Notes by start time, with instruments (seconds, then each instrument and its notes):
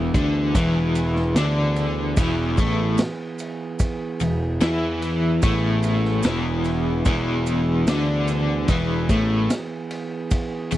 Already playing: picked electric bass E1, overdriven electric guitar E2 E3, tonewheel organ E3 B3 G#4
0.14 picked electric bass D2, overdriven electric guitar D3 D4, kick, ride, maracas
0.55 picked electric bass E1, overdriven electric guitar E2 E3, kick, ride, maracas
0.95 ride, maracas
1.16 snare
1.35 picked electric bass D2, overdriven electric guitar D3 D4, snare, ride, maracas
1.76 ride, maracas
2.17 picked electric bass E1, overdriven electric guitar E2 E3, kick, ride, maracas
2.57 picked electric bass A1, overdriven electric guitar A2 A3, kick, ride, maracas
2.98 snare, ride, maracas
3.39 ride, maracas
3.79 kick, ride, maracas
4.20 picked electric bass E1, overdriven electric guitar E2, ride, maracas
4.61 picked electric bass E2, overdriven electric guitar E3 E4, snare, ride, maracas
5.02 ride, maracas
5.42 picked electric bass A1, overdriven electric guitar A2 A3, kick, ride, maracas
5.83 ride, maracas
6.05 snare
6.23 picked electric bass E1, overdriven electric guitar E2 E3, snare, ride, maracas
6.64 ride, maracas
7.05 picked electric bass E1, overdriven electric guitar E2 E3, kick, ride, maracas
7.46 ride, maracas
7.86 picked electric bass D2, overdriven electric guitar D3 D4, snare, ride, maracas
8.28 ride, maracas
8.68 picked electric bass E1, overdriven electric guitar E2 E3, kick, ride, maracas
9.09 picked electric bass A1, overdriven electric guitar A2 A3, kick, ride, maracas
9.50 snare, ride, maracas
9.91 ride
10.31 kick, ride, maracas
10.71 picked electric bass E1, overdriven electric guitar E2, ride, maracas